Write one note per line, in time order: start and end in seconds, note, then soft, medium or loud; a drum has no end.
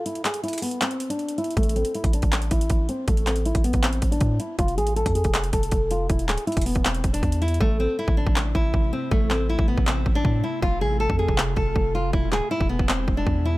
0.06 0.22 E4 medium
0.06 closed hi-hat medium
0.15 closed hi-hat medium
0.25 0.41 G#4 medium
0.25 clap loud
0.25 closed hi-hat medium
0.34 closed hi-hat medium
0.43 0.59 E4 medium
0.43 closed hi-hat soft
0.48 closed hi-hat medium
0.53 closed hi-hat medium
0.58 closed hi-hat medium
0.62 0.78 B3 medium
0.62 open hi-hat medium
0.71 closed hi-hat medium
0.81 1.08 C4 medium
0.81 clap loud
0.81 closed hi-hat medium
0.91 closed hi-hat medium
1.00 closed hi-hat medium
1.10 1.36 D4 medium
1.10 closed hi-hat medium
1.19 closed hi-hat soft
1.29 closed hi-hat medium
1.38 1.54 E4 medium
1.38 closed hi-hat soft
1.44 closed hi-hat soft
1.51 closed hi-hat medium
1.57 1.84 A1 loud
1.57 1.73 A3 loud
1.57 kick loud
1.57 closed hi-hat medium
1.63 closed hi-hat medium
1.69 closed hi-hat medium
1.76 1.92 C4 medium
1.76 closed hi-hat medium
1.85 closed hi-hat medium
1.95 2.11 E4 medium
1.95 closed hi-hat medium
2.04 2.22 A1 loud
2.04 kick loud
2.04 closed hi-hat medium
2.13 2.49 D4 medium
2.13 closed hi-hat medium
2.22 2.50 A1 loud
2.22 kick medium
2.22 closed hi-hat medium
2.32 clap loud
2.32 closed hi-hat medium
2.42 closed hi-hat medium
2.51 2.69 A1 loud
2.51 2.87 E4 medium
2.51 kick medium
2.51 closed hi-hat medium
2.61 closed hi-hat medium
2.70 2.88 A1 loud
2.70 kick medium
2.70 closed hi-hat medium
2.89 3.05 C4 medium
2.89 closed hi-hat medium
3.07 3.53 A1 loud
3.07 3.23 A3 medium
3.07 kick loud
3.07 closed hi-hat medium
3.17 closed hi-hat medium
3.27 3.43 C4 medium
3.27 clap medium
3.27 closed hi-hat medium
3.36 closed hi-hat medium
3.45 3.61 E4 medium
3.45 closed hi-hat medium
3.55 3.73 A1 loud
3.55 kick medium
3.55 closed hi-hat medium
3.64 3.80 B3 medium
3.64 closed hi-hat medium
3.73 4.01 A1 loud
3.73 kick medium
3.73 closed hi-hat medium
3.83 4.10 C4 medium
3.83 clap loud
3.83 closed hi-hat medium
3.93 closed hi-hat medium
4.02 4.20 A1 loud
4.02 kick medium
4.02 closed hi-hat medium
4.11 4.38 D4 medium
4.11 closed hi-hat medium
4.21 4.39 A2 loud
4.21 kick loud
4.21 closed hi-hat medium
4.40 4.56 E4 medium
4.40 closed hi-hat medium
4.59 4.79 F1 loud
4.59 4.75 F4 loud
4.59 kick loud
4.59 closed hi-hat medium
4.68 closed hi-hat medium
4.77 5.04 A1 loud
4.77 4.93 G#4 loud
4.77 closed hi-hat medium
4.87 closed hi-hat medium
4.96 5.12 A4 medium
4.96 closed hi-hat medium
5.06 5.24 F2 loud
5.06 kick medium
5.06 closed hi-hat medium
5.15 5.51 G#4 medium
5.15 closed hi-hat medium
5.24 5.52 F1 loud
5.24 kick medium
5.24 closed hi-hat medium
5.34 clap loud
5.34 closed hi-hat medium
5.44 closed hi-hat medium
5.53 5.71 F1 loud
5.53 5.88 A4 medium
5.53 kick medium
5.53 closed hi-hat medium
5.63 closed hi-hat medium
5.71 6.08 F1 loud
5.71 kick loud
5.71 closed hi-hat medium
5.91 6.07 F4 medium
5.91 closed hi-hat medium
6.09 6.30 E1 loud
6.09 6.25 E4 medium
6.09 kick loud
6.09 closed hi-hat medium
6.19 closed hi-hat medium
6.28 6.37 D1 loud
6.28 6.44 G#4 medium
6.28 clap loud
6.28 closed hi-hat medium
6.38 closed hi-hat medium
6.47 6.63 E4 loud
6.47 closed hi-hat soft
6.52 closed hi-hat medium
6.57 6.75 E1 loud
6.57 kick medium
6.57 closed hi-hat medium
6.62 closed hi-hat medium
6.66 6.82 B3 medium
6.66 open hi-hat medium
6.75 7.03 E1 loud
6.75 kick medium
6.75 closed hi-hat medium
6.85 7.12 C4 medium
6.85 clap loud
6.85 closed hi-hat medium
6.95 closed hi-hat medium
7.04 7.22 E1 loud
7.04 kick medium
7.04 closed hi-hat medium
7.13 7.40 D4 medium
7.13 closed hi-hat medium
7.23 7.59 E2 loud
7.23 kick medium
7.23 closed hi-hat soft
7.32 closed hi-hat medium
7.42 7.58 E4 medium
7.42 closed hi-hat soft
7.48 closed hi-hat soft
7.54 closed hi-hat medium
7.61 7.88 A1 loud
7.61 12.09 C3 medium
7.61 12.09 A3 medium
7.61 7.77 A3 loud
7.61 10.59 E4 medium
7.61 kick loud
7.80 7.96 C4 medium
7.99 8.14 E4 medium
8.08 8.26 A1 loud
8.08 kick loud
8.17 8.53 D4 medium
8.27 8.54 A1 loud
8.27 kick medium
8.36 clap loud
8.55 8.73 A1 loud
8.55 8.90 E4 medium
8.55 kick medium
8.74 8.92 A1 loud
8.74 kick medium
8.93 9.09 C4 medium
9.11 9.57 A1 loud
9.11 9.27 A3 medium
9.11 kick loud
9.30 9.46 C4 medium
9.30 clap medium
9.49 9.65 E4 medium
9.59 9.77 A1 loud
9.59 kick loud
9.68 9.84 B3 medium
9.78 10.05 A1 loud
9.78 kick medium
9.87 10.14 C4 medium
9.87 clap loud
10.06 10.24 A1 loud
10.06 kick medium
10.15 10.42 D4 medium
10.25 10.43 A2 loud
10.25 kick medium
10.44 10.59 E4 medium
10.62 10.83 F1 loud
10.62 12.12 F4 medium
10.62 10.78 F4 loud
10.62 kick loud
10.81 11.08 A1 loud
10.81 10.97 G#4 medium
11.00 11.16 A4 medium
11.10 11.28 F2 loud
11.10 kick loud
11.19 11.54 G#4 medium
11.28 11.56 F1 loud
11.28 kick medium
11.38 clap loud
11.56 11.75 F1 loud
11.56 11.92 A4 medium
11.56 kick medium
11.76 12.12 F1 loud
11.76 kick medium
11.95 12.11 F4 medium
12.13 12.34 E1 loud
12.13 13.58 B2 medium
12.13 13.58 G#3 medium
12.13 12.29 E4 medium
12.13 13.58 E4 medium
12.13 kick loud
12.32 12.41 D1 loud
12.32 12.48 G#4 medium
12.32 clap medium
12.51 12.67 E4 medium
12.61 12.79 E1 loud
12.61 kick medium
12.69 12.86 B3 medium
12.79 13.07 E1 loud
12.79 kick medium
12.89 13.15 C4 medium
12.89 clap loud
13.08 13.26 E1 loud
13.08 kick medium
13.17 13.44 D4 medium
13.27 13.58 E2 loud
13.27 kick medium
13.45 13.58 E4 medium